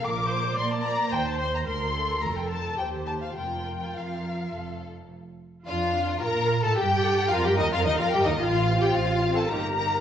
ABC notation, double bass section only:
X:1
M:3/4
L:1/16
Q:1/4=108
K:Bb
V:1 name="Double bass section" clef=bass
B,,,4 B,,4 E,,4 | D,,4 F,,,4 E,,4 | F,,,4 F,,4 F,,,4 | z4 F,,4 B,,3 A,, |
G,,4 F,, G,, E,, F,, E,, F,, G,, E,, | A,,,4 A,,,4 G,,,4 |]